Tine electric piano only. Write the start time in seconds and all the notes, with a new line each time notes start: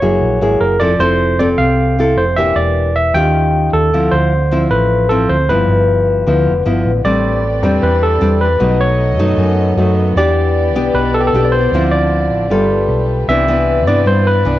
Already playing: C#5
0.61 A#4
0.80 D5
1.00 C5
1.39 D5
1.58 F5
2.18 C5
2.36 E5
2.56 D5
2.96 E5
3.14 G5
3.73 A4
4.11 C5
4.71 B4
5.09 A4
5.29 C5
5.49 B4
7.05 D5
7.83 B4
8.03 A4
8.41 B4
8.81 C#5
10.17 D5
10.95 B4
11.14 A4
11.20 G4
11.27 A4
11.45 D5
11.52 C5
11.91 D5
13.29 E5
13.88 D5
14.07 C5
14.27 B4